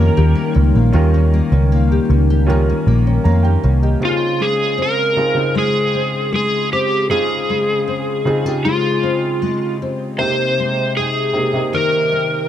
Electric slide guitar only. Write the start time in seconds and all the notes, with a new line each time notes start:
Already playing: A#4
4.05 F4
4.42 G#4
4.82 A#4
5.58 G#4
6.35 G#4
6.73 G4
7.11 G#4
8.65 F4
10.19 C5
10.97 G#4
11.75 A#4